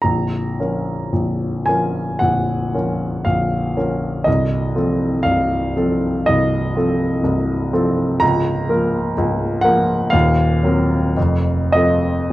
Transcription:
<<
  \new Staff \with { instrumentName = "Grand piano" } { \time 4/4 \key bes \minor \tempo 4 = 59 bes''4. aes''8 ges''4 f''4 | ees''4 f''4 ees''4. r8 | bes''4. ges''8 f''4. ees''8 | }
  \new Staff \with { instrumentName = "Grand piano" } { \clef bass \time 4/4 \key bes \minor <bes,,, bes,,>8 <f des' bes'>8 <bes,,, bes,,>8 <f des' bes'>8 <bes,,, bes,,>8 <f des' bes'>8 <bes,,, bes,,>8 <f des' bes'>8 | <c,, c,>8 <f c' a'>8 <c,, c,>8 <f c' a'>8 <c,, c,>8 <f c' a'>8 <c,, c,>8 <f c' a'>8 | <des,, des,>8 <f bes bes'>8 <des,, des,>8 <f bes bes'>8 <ees,, ees,>8 <ges c' bes'>8 <f,, f,>8 <f c' a'>8 | }
>>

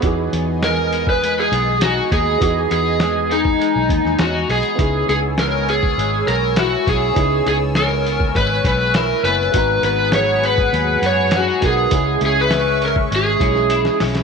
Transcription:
<<
  \new Staff \with { instrumentName = "Analog synth pad" } { \time 4/4 \key cis \dorian \tempo 4 = 101 << { gis''1~ | gis''1 | <gis'' e'''>1~ | <gis'' e'''>1 |
<b' fis''>1 | <e'' cis'''>1 | } \\ { dis''1~ | dis''1 | cis''1~ | cis''1 |
gis'1~ | gis'1 | } >> }
  \new Staff \with { instrumentName = "Electric slide guitar" } { \time 4/4 \key cis \dorian r4 ais'8. b'8 gis'8. fis'8 gis'8~ | gis'8 gis'4 dis'4. fis'8 gis'8~ | gis'8 gis'8 ais'8 gis'4 ais'8 fis'8 gis'8~ | gis'8 gis'8 ais'4 b'8 b'8 ais'8 b'8~ |
b'8 b'8 cis''8 b'4 cis''8 fis'8 gis'8~ | gis'8 gis'16 b'8. ais'8 gis'4. r8 | }
  \new Staff \with { instrumentName = "Upright piano" } { \time 4/4 \key cis \dorian <b dis' fis' gis'>1 | <b dis' fis' gis'>1 | <b dis' e' gis'>1 | <b dis' e' gis'>1 |
<b dis' fis' ais''>2.~ <b dis' fis' ais''>8 <b dis' fis' ais'>8 | <gis cis' e' gis'>2~ <gis cis' e' gis'>8 <gis cis' e' gis'>4. | }
  \new Staff \with { instrumentName = "Clean electric guitar" } { \time 4/4 \key cis \dorian e8 b8 gis8 b8 gis8 b8 dis'8 b8 | e8 b8 gis8 b8 gis8 b8 cis'16 dis'16 b8 | cis8 b8 gis8 b8 gis8 b8 e'8 b8 | cis8 b8 gis8 b8 gis8 b8 e'8 b8 |
gis,8 b8 fis8 b8 fis8 b8 cis'16 dis'16 b8 | cis8 cis'8 gis8 cis'8 gis8 cis'8 e'8 cis'8 | }
  \new Staff \with { instrumentName = "Fingered electric bass" } { \clef bass \time 4/4 \key cis \dorian e,8 e,2 b,,4 dis,8 | e,8 e,4. r16 b,,16 dis,16 dis,16 e,8 b,,16 r16 | cis,8 cis,4. gis,,8 b,,4 b,,8 | cis,8 cis,4. gis,,8 b,,4 fis,,8 |
gis,,8 gis,,4. dis,8 fis,4 b,,8 | cis,8 cis,4. gis,,8 b,,4 b,,8 | }
  \new DrumStaff \with { instrumentName = "Drums" } \drummode { \time 4/4 <hh bd>8 hh8 <hh sn>8 hh16 bd16 hh8 hh8 <hh sn>8 <hh bd>8 | <hh bd>8 hh8 <hh sn>8 hh16 bd16 hh8 <hh bd>16 sn16 <hh sn>8 hho16 hh16 | <hh bd>8 hh8 <hh sn>8 hh16 bd16 hh8 hh8 <hh sn>8 <hh bd>8 | <hh bd>8 hh8 <hh sn>8 hh16 bd16 <hh bd>8 <hh bd>8 <hh sn>8 hh8 |
<hh bd>8 hh8 <hh sn>8 hh16 bd16 hh8 hh8 <hh sn>8 <hh bd>8 | <hh bd>8 hh8 <hh sn>8 hh16 bd16 hh8 <hh bd>16 sn16 hh16 sn16 <hho sn>16 <hh sn>16 | }
>>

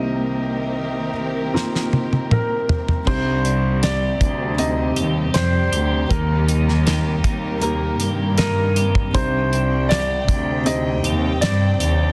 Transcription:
<<
  \new Staff \with { instrumentName = "Grand piano" } { \time 4/4 \key c \minor \tempo 4 = 79 ees''2. bes'4 | c''4 d''4 ees''4 c''4 | bes'2. bes'4 | c''4 d''4 ees''4 d''4 | }
  \new Staff \with { instrumentName = "Clean electric guitar" } { \time 4/4 \key c \minor r1 | c8 d'8 g'4. g'8 d'8 g'8 | ees8 ees'8 g'8 ees'8 bes8 g'8 ees'8 g'8 | c8 d'8 g'4. g'8 d'8 g'8 | }
  \new Staff \with { instrumentName = "Felt piano" } { \time 4/4 \key c \minor <bes c' ees' g'>4. r8 <bes c' ees' f'>2 | <c' d' ees' g'>2 <c' ees' g'>2 | <bes ees' g' bes'>2 <bes ees' g' bes'>2 | <d' ees' g' c''>2 <c' ees' g' c''>2 | }
  \new Staff \with { instrumentName = "Felt piano" } { \clef bass \time 4/4 \key c \minor <c, c>2.~ <c, c>8 r8 | c4. r2 r8 | ees4. r2 r8 | c4. r2 r8 | }
  \new Staff \with { instrumentName = "String section" } { \time 4/4 \key c \minor << { <c' g' bes'>1 | <c' g'>1 | <bes bes'>1 | <c' g''>1 | } \\ { <ees bes>1 | <c g>1~ | <c g>1~ | <c g>1 | } >> }
  \new Staff \with { instrumentName = "Cello section" } { \clef bass \time 4/4 \key c \minor r1 | c,4. d,4 ees,8 f,8 d,8 | ees,4. ees,4 g,4. | c,4. d,4 ees,8 g,8 ees,8 | }
  \new DrumStaff \with { instrumentName = "Drums" } \drummode { \time 4/4 r4 r4 sn16 sn16 tommh16 tommh16 toml8 tomfh16 tomfh16 | <cymc bd>8 hh8 <hh sn>8 <hh bd>8 hh8 hh8 <hh sn>8 hh8 | <hh bd>8 hh16 sn16 <hh sn>8 <hh bd>8 hh8 hh8 <hh sn>8 hh16 bd16 | <hh bd>8 hh8 <hh sn>8 <hh bd>8 hh8 hh8 <hh sn>8 hh8 | }
>>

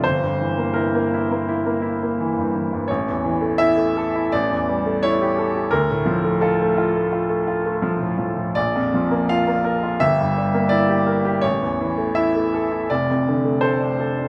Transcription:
<<
  \new Staff \with { instrumentName = "Grand piano" } { \time 4/4 \key d \minor \tempo 4 = 84 c''4 bes'2. | cis''4 e''4 d''4 cis''4 | bes'4 a'2. | d''4 f''4 e''4 d''4 |
cis''4 e''4 d''4 c''4 | }
  \new Staff \with { instrumentName = "Grand piano" } { \time 4/4 \key d \minor g,,16 g,16 e16 bes16 e'16 bes16 e'16 bes16 e'16 bes16 e'16 bes16 e16 g,16 e16 g,16 | a,,16 e,16 e16 a16 e'16 a16 a'16 e'16 a,,16 e,16 g16 a16 e'16 g'16 a'16 g'16 | d,16 a,16 f16 a16 f'16 a16 f'16 a16 f'16 a16 f'16 a16 f16 a,16 f16 a,16 | bes,,16 f,16 f16 bes16 f'16 bes16 bes'16 f'16 g,,16 g,16 g16 bes16 e'16 g'16 bes'16 g'16 |
a,,16 e,16 e16 a16 e'16 a16 a'16 e'16 f,,16 f,16 d16 a16 a'16 d'16 a'16 d'16 | }
>>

